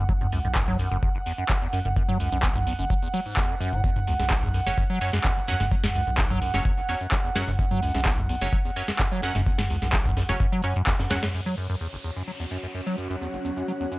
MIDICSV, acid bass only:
0, 0, Header, 1, 2, 480
1, 0, Start_track
1, 0, Tempo, 468750
1, 92, Time_signature, 4, 2, 24, 8
1, 14325, End_track
2, 0, Start_track
2, 0, Title_t, "Acid bass"
2, 0, Program_c, 0, 38
2, 93, Note_on_c, 0, 54, 82
2, 134, Note_off_c, 0, 54, 0
2, 217, Note_on_c, 0, 40, 75
2, 280, Note_off_c, 0, 40, 0
2, 333, Note_on_c, 0, 42, 76
2, 401, Note_off_c, 0, 42, 0
2, 457, Note_on_c, 0, 42, 76
2, 495, Note_off_c, 0, 42, 0
2, 572, Note_on_c, 0, 42, 80
2, 641, Note_off_c, 0, 42, 0
2, 696, Note_on_c, 0, 54, 101
2, 792, Note_off_c, 0, 54, 0
2, 812, Note_on_c, 0, 42, 77
2, 915, Note_off_c, 0, 42, 0
2, 936, Note_on_c, 0, 42, 101
2, 1000, Note_off_c, 0, 42, 0
2, 1051, Note_on_c, 0, 40, 79
2, 1120, Note_off_c, 0, 40, 0
2, 1176, Note_on_c, 0, 30, 76
2, 1215, Note_off_c, 0, 30, 0
2, 1291, Note_on_c, 0, 40, 78
2, 1360, Note_off_c, 0, 40, 0
2, 1415, Note_on_c, 0, 42, 77
2, 1480, Note_off_c, 0, 42, 0
2, 1531, Note_on_c, 0, 54, 82
2, 1573, Note_off_c, 0, 54, 0
2, 1656, Note_on_c, 0, 40, 76
2, 1720, Note_off_c, 0, 40, 0
2, 1771, Note_on_c, 0, 42, 74
2, 1841, Note_off_c, 0, 42, 0
2, 1896, Note_on_c, 0, 42, 79
2, 1935, Note_off_c, 0, 42, 0
2, 2012, Note_on_c, 0, 42, 83
2, 2081, Note_off_c, 0, 42, 0
2, 2136, Note_on_c, 0, 54, 105
2, 2232, Note_off_c, 0, 54, 0
2, 2252, Note_on_c, 0, 42, 79
2, 2355, Note_off_c, 0, 42, 0
2, 2376, Note_on_c, 0, 42, 101
2, 2440, Note_off_c, 0, 42, 0
2, 2492, Note_on_c, 0, 40, 84
2, 2561, Note_off_c, 0, 40, 0
2, 2616, Note_on_c, 0, 30, 76
2, 2655, Note_off_c, 0, 30, 0
2, 2732, Note_on_c, 0, 40, 74
2, 2801, Note_off_c, 0, 40, 0
2, 2856, Note_on_c, 0, 42, 80
2, 2920, Note_off_c, 0, 42, 0
2, 2972, Note_on_c, 0, 54, 79
2, 3013, Note_off_c, 0, 54, 0
2, 3096, Note_on_c, 0, 40, 78
2, 3160, Note_off_c, 0, 40, 0
2, 3212, Note_on_c, 0, 54, 100
2, 3281, Note_off_c, 0, 54, 0
2, 3337, Note_on_c, 0, 44, 77
2, 3432, Note_off_c, 0, 44, 0
2, 3452, Note_on_c, 0, 40, 79
2, 3577, Note_on_c, 0, 42, 103
2, 3592, Note_off_c, 0, 40, 0
2, 3640, Note_off_c, 0, 42, 0
2, 3691, Note_on_c, 0, 42, 103
2, 3815, Note_on_c, 0, 45, 75
2, 3830, Note_off_c, 0, 42, 0
2, 3911, Note_off_c, 0, 45, 0
2, 3930, Note_on_c, 0, 40, 81
2, 4000, Note_off_c, 0, 40, 0
2, 4055, Note_on_c, 0, 30, 77
2, 4094, Note_off_c, 0, 30, 0
2, 4171, Note_on_c, 0, 40, 80
2, 4240, Note_off_c, 0, 40, 0
2, 4296, Note_on_c, 0, 42, 76
2, 4360, Note_off_c, 0, 42, 0
2, 4411, Note_on_c, 0, 54, 83
2, 4453, Note_off_c, 0, 54, 0
2, 4536, Note_on_c, 0, 40, 78
2, 4600, Note_off_c, 0, 40, 0
2, 4651, Note_on_c, 0, 42, 74
2, 4720, Note_off_c, 0, 42, 0
2, 4777, Note_on_c, 0, 42, 75
2, 4815, Note_off_c, 0, 42, 0
2, 4892, Note_on_c, 0, 42, 82
2, 4961, Note_off_c, 0, 42, 0
2, 5016, Note_on_c, 0, 54, 99
2, 5112, Note_off_c, 0, 54, 0
2, 5131, Note_on_c, 0, 42, 77
2, 5235, Note_off_c, 0, 42, 0
2, 5256, Note_on_c, 0, 42, 97
2, 5320, Note_off_c, 0, 42, 0
2, 5371, Note_on_c, 0, 40, 80
2, 5440, Note_off_c, 0, 40, 0
2, 5496, Note_on_c, 0, 30, 77
2, 5535, Note_off_c, 0, 30, 0
2, 5611, Note_on_c, 0, 40, 76
2, 5680, Note_off_c, 0, 40, 0
2, 5736, Note_on_c, 0, 42, 78
2, 5800, Note_off_c, 0, 42, 0
2, 5851, Note_on_c, 0, 54, 86
2, 5893, Note_off_c, 0, 54, 0
2, 5975, Note_on_c, 0, 40, 75
2, 6040, Note_off_c, 0, 40, 0
2, 6091, Note_on_c, 0, 42, 76
2, 6160, Note_off_c, 0, 42, 0
2, 6216, Note_on_c, 0, 42, 76
2, 6255, Note_off_c, 0, 42, 0
2, 6332, Note_on_c, 0, 42, 80
2, 6401, Note_off_c, 0, 42, 0
2, 6456, Note_on_c, 0, 54, 101
2, 6552, Note_off_c, 0, 54, 0
2, 6573, Note_on_c, 0, 42, 76
2, 6675, Note_off_c, 0, 42, 0
2, 6696, Note_on_c, 0, 42, 105
2, 6760, Note_off_c, 0, 42, 0
2, 6813, Note_on_c, 0, 40, 78
2, 6881, Note_off_c, 0, 40, 0
2, 6938, Note_on_c, 0, 30, 75
2, 6975, Note_off_c, 0, 30, 0
2, 7053, Note_on_c, 0, 40, 78
2, 7121, Note_off_c, 0, 40, 0
2, 7177, Note_on_c, 0, 42, 77
2, 7240, Note_off_c, 0, 42, 0
2, 7293, Note_on_c, 0, 54, 84
2, 7334, Note_off_c, 0, 54, 0
2, 7418, Note_on_c, 0, 40, 79
2, 7481, Note_off_c, 0, 40, 0
2, 7532, Note_on_c, 0, 42, 77
2, 7601, Note_off_c, 0, 42, 0
2, 7658, Note_on_c, 0, 42, 78
2, 7696, Note_off_c, 0, 42, 0
2, 7773, Note_on_c, 0, 42, 82
2, 7841, Note_off_c, 0, 42, 0
2, 7896, Note_on_c, 0, 54, 103
2, 7992, Note_off_c, 0, 54, 0
2, 8013, Note_on_c, 0, 42, 81
2, 8115, Note_off_c, 0, 42, 0
2, 8137, Note_on_c, 0, 42, 101
2, 8200, Note_off_c, 0, 42, 0
2, 8253, Note_on_c, 0, 40, 84
2, 8321, Note_off_c, 0, 40, 0
2, 8378, Note_on_c, 0, 30, 77
2, 8416, Note_off_c, 0, 30, 0
2, 8492, Note_on_c, 0, 40, 75
2, 8561, Note_off_c, 0, 40, 0
2, 8617, Note_on_c, 0, 42, 78
2, 8681, Note_off_c, 0, 42, 0
2, 8732, Note_on_c, 0, 54, 82
2, 8774, Note_off_c, 0, 54, 0
2, 8857, Note_on_c, 0, 40, 75
2, 8921, Note_off_c, 0, 40, 0
2, 8972, Note_on_c, 0, 42, 80
2, 9041, Note_off_c, 0, 42, 0
2, 9097, Note_on_c, 0, 42, 75
2, 9135, Note_off_c, 0, 42, 0
2, 9212, Note_on_c, 0, 42, 83
2, 9281, Note_off_c, 0, 42, 0
2, 9337, Note_on_c, 0, 54, 101
2, 9432, Note_off_c, 0, 54, 0
2, 9453, Note_on_c, 0, 42, 75
2, 9555, Note_off_c, 0, 42, 0
2, 9577, Note_on_c, 0, 42, 100
2, 9641, Note_off_c, 0, 42, 0
2, 9692, Note_on_c, 0, 40, 80
2, 9761, Note_off_c, 0, 40, 0
2, 9817, Note_on_c, 0, 30, 77
2, 9855, Note_off_c, 0, 30, 0
2, 9933, Note_on_c, 0, 40, 76
2, 10001, Note_off_c, 0, 40, 0
2, 10057, Note_on_c, 0, 42, 76
2, 10121, Note_off_c, 0, 42, 0
2, 10172, Note_on_c, 0, 54, 81
2, 10214, Note_off_c, 0, 54, 0
2, 10297, Note_on_c, 0, 40, 75
2, 10360, Note_off_c, 0, 40, 0
2, 10412, Note_on_c, 0, 42, 75
2, 10481, Note_off_c, 0, 42, 0
2, 10536, Note_on_c, 0, 42, 78
2, 10575, Note_off_c, 0, 42, 0
2, 10652, Note_on_c, 0, 42, 80
2, 10721, Note_off_c, 0, 42, 0
2, 10777, Note_on_c, 0, 54, 102
2, 10872, Note_off_c, 0, 54, 0
2, 10892, Note_on_c, 0, 42, 76
2, 10995, Note_off_c, 0, 42, 0
2, 11017, Note_on_c, 0, 42, 98
2, 11081, Note_off_c, 0, 42, 0
2, 11132, Note_on_c, 0, 40, 85
2, 11201, Note_off_c, 0, 40, 0
2, 11256, Note_on_c, 0, 30, 80
2, 11295, Note_off_c, 0, 30, 0
2, 11372, Note_on_c, 0, 40, 73
2, 11441, Note_off_c, 0, 40, 0
2, 11497, Note_on_c, 0, 42, 77
2, 11561, Note_off_c, 0, 42, 0
2, 11613, Note_on_c, 0, 42, 78
2, 11681, Note_off_c, 0, 42, 0
2, 11736, Note_on_c, 0, 54, 98
2, 11832, Note_off_c, 0, 54, 0
2, 11852, Note_on_c, 0, 42, 75
2, 11955, Note_off_c, 0, 42, 0
2, 11976, Note_on_c, 0, 42, 93
2, 12040, Note_off_c, 0, 42, 0
2, 12091, Note_on_c, 0, 40, 82
2, 12160, Note_off_c, 0, 40, 0
2, 12216, Note_on_c, 0, 30, 75
2, 12255, Note_off_c, 0, 30, 0
2, 12332, Note_on_c, 0, 40, 73
2, 12401, Note_off_c, 0, 40, 0
2, 12456, Note_on_c, 0, 42, 72
2, 12520, Note_off_c, 0, 42, 0
2, 12571, Note_on_c, 0, 54, 77
2, 12613, Note_off_c, 0, 54, 0
2, 12695, Note_on_c, 0, 40, 72
2, 12760, Note_off_c, 0, 40, 0
2, 12811, Note_on_c, 0, 42, 73
2, 12880, Note_off_c, 0, 42, 0
2, 12936, Note_on_c, 0, 42, 72
2, 12975, Note_off_c, 0, 42, 0
2, 13051, Note_on_c, 0, 42, 83
2, 13121, Note_off_c, 0, 42, 0
2, 13176, Note_on_c, 0, 54, 97
2, 13272, Note_off_c, 0, 54, 0
2, 13292, Note_on_c, 0, 42, 74
2, 13395, Note_off_c, 0, 42, 0
2, 13415, Note_on_c, 0, 42, 95
2, 13480, Note_off_c, 0, 42, 0
2, 13531, Note_on_c, 0, 40, 79
2, 13600, Note_off_c, 0, 40, 0
2, 13655, Note_on_c, 0, 30, 74
2, 13694, Note_off_c, 0, 30, 0
2, 13770, Note_on_c, 0, 40, 76
2, 13840, Note_off_c, 0, 40, 0
2, 13895, Note_on_c, 0, 42, 76
2, 13959, Note_off_c, 0, 42, 0
2, 14010, Note_on_c, 0, 54, 83
2, 14052, Note_off_c, 0, 54, 0
2, 14135, Note_on_c, 0, 40, 73
2, 14200, Note_off_c, 0, 40, 0
2, 14251, Note_on_c, 0, 42, 72
2, 14320, Note_off_c, 0, 42, 0
2, 14325, End_track
0, 0, End_of_file